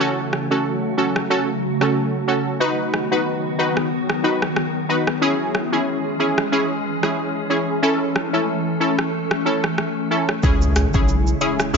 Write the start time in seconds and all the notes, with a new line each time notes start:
0.00 C#3 F#3 A3 C#4 F#4 A4
0.33 cross-stick
0.51 C#4 F#4 A4
0.97 C#4 F#4 A4
1.16 cross-stick
1.30 C#4 F#4 A4
1.81 C#4 F#4 A4, cross-stick
2.28 C#4 F#4 A4
2.60 D#3 F#3 B3 D#4 F#4 B4
2.94 cross-stick
3.11 D#4 F#4 B4
3.58 D#4 F#4 B4
3.77 cross-stick
4.10 cross-stick
4.23 D#4 F#4 B4
4.42 cross-stick
4.56 cross-stick
4.89 D#4 F#4 B4
5.07 cross-stick
5.21 E3 G#3 C#4 E4 G#4
5.55 cross-stick
5.72 C#4 E4 G#4
6.19 C#4 E4 G#4
6.38 cross-stick
6.52 C#4 E4 G#4
7.03 C#4 E4 G#4, cross-stick
7.50 C#4 E4 G#4
7.82 A3 C#4 E4 A4
8.16 cross-stick
8.33 C#4 E4 A4
8.80 C#4 E4 A4
8.99 cross-stick
9.31 cross-stick
9.45 C#4 E4 A4
9.64 cross-stick
9.78 cross-stick
10.11 C#4 E4 A4
10.29 cross-stick
10.43 C#2 C#3 G#3 C#4 E4 G#4, kick, impact, shaker
10.62 shaker
10.76 cross-stick, closed hi-hat, shaker
10.94 B1 C#4 E4 G#4, kick, shaker
11.08 shaker
11.27 shaker
11.41 C#4 E4 G#4, closed hi-hat, shaker
11.60 cross-stick, shaker
11.73 C#2 C#4 E4